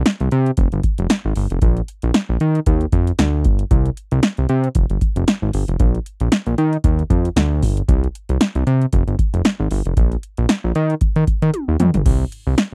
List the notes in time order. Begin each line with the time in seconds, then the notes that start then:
0.06 snare, closed hi-hat
0.20 C2, closed hi-hat
0.31 C3, closed hi-hat
0.46 closed hi-hat
0.57 F1, kick, closed hi-hat
0.72 G1, closed hi-hat
0.83 kick, closed hi-hat
0.98 F1, closed hi-hat
1.10 snare, closed hi-hat
1.25 G#1
1.36 G1, open hi-hat
1.50 F1, closed hi-hat
1.62 A#1, kick, closed hi-hat
1.77 closed hi-hat
1.88 closed hi-hat
2.02 A#1, closed hi-hat
2.14 snare, closed hi-hat
2.29 A#1
2.40 D#3, closed hi-hat
2.55 closed hi-hat
2.66 D#2, kick, closed hi-hat
2.81 closed hi-hat
2.92 F2, kick, closed hi-hat
3.07 closed hi-hat
3.19 D2, snare, closed hi-hat
3.45 G1, kick, closed hi-hat
3.59 closed hi-hat
3.71 C2, kick, closed hi-hat
3.86 closed hi-hat
3.97 closed hi-hat
4.11 C2, closed hi-hat
4.23 snare, closed hi-hat
4.37 C2, closed hi-hat
4.49 C3, closed hi-hat
4.64 closed hi-hat
4.75 F1, kick, closed hi-hat
4.90 G1, closed hi-hat
5.01 kick, closed hi-hat
5.16 F1, closed hi-hat
5.28 snare, closed hi-hat
5.42 G#1
5.53 G1, open hi-hat
5.68 F1, closed hi-hat
5.80 A#1, kick, closed hi-hat
5.95 closed hi-hat
6.06 closed hi-hat
6.20 A#1, closed hi-hat
6.32 snare, closed hi-hat
6.46 A#1, closed hi-hat
6.58 D#3, closed hi-hat
6.73 closed hi-hat
6.84 D#2, kick, closed hi-hat
6.99 closed hi-hat
7.10 F2, kick, closed hi-hat
7.25 closed hi-hat
7.36 D2, snare, closed hi-hat
7.63 G1, kick, open hi-hat
7.77 closed hi-hat
7.88 C2, kick, closed hi-hat
8.04 closed hi-hat
8.15 closed hi-hat
8.29 C2, closed hi-hat
8.41 snare, closed hi-hat
8.55 C2, closed hi-hat
8.67 C3, closed hi-hat
8.81 closed hi-hat
8.93 F1, kick, closed hi-hat
9.08 G1, closed hi-hat
9.19 kick, closed hi-hat
9.34 F1, closed hi-hat
9.45 snare, closed hi-hat
9.60 G#1
9.71 G1, open hi-hat
9.85 F1, closed hi-hat
9.97 A#1, kick, closed hi-hat
10.12 closed hi-hat
10.23 closed hi-hat
10.37 A#1, closed hi-hat
10.49 snare, closed hi-hat
10.64 A#1
10.75 D#3, closed hi-hat
10.90 closed hi-hat
11.01 kick, closed hi-hat
11.16 D#3, closed hi-hat
11.27 kick, closed hi-hat
11.42 D#3, closed hi-hat
11.54 closed hi-hat, high tom
11.68 D#2
11.80 F2, closed hi-hat, mid tom
11.94 G1, closed hi-hat, floor tom
12.06 C2, kick, closed hi-hat, crash
12.32 closed hi-hat
12.47 C2
12.58 snare, closed hi-hat